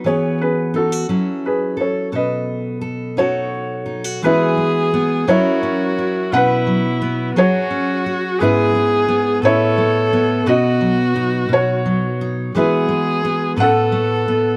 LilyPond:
<<
  \new Staff \with { instrumentName = "Felt piano" } { \time 6/8 \key e \major \tempo 4. = 58 <gis' cis''>8 <gis' b'>8 <fis' a'>4 <gis' b'>8 <a' cis''>8 | <b' dis''>4. <fis' cis''>4. | <e' b'>4 r8 <e' cis''>4. | <b' fis''>4. <fis' cis''>4. |
<e' b'>4 r8 <e' cis''>4. | <fis' dis''>4. <fis' cis''>4. | <e' b'>4 r8 <a' fis''>4. | }
  \new Staff \with { instrumentName = "Viola" } { \time 6/8 \key e \major r2. | r2. | gis'4. fis'4. | e'4. fis'4. |
gis'4. a'4. | fis'2~ fis'8 r8 | gis'4. a'4. | }
  \new Staff \with { instrumentName = "Steel-string acoustic guitar" } { \time 6/8 \key e \major << { <b fis' b'>4 dis'16 fis'16 <cis' e'>4 a'8 | a'4 a'8 <dis' fis' a'>4 dis'16 fis'16 | <gis b fis' gis'>4 b8 <cis' e' ais'>4 e'8 | b'4 b8 gis'4 fis'8 |
<gis b e' gis'>4 b8 b'4 b8 | b'4 dis'4. dis'8 | <gis b fis' gis'>4 b8 b'4 b8 | } \\ { e4. fis4. | b,2. | e8 gis4 fis8 cis'4 | b,8 fis4 fis8 cis'4 |
gis,8 gis4 a,8 a4 | b,8 fis4 b,8 fis4 | e8 gis4 a,8 a4 | } >> }
>>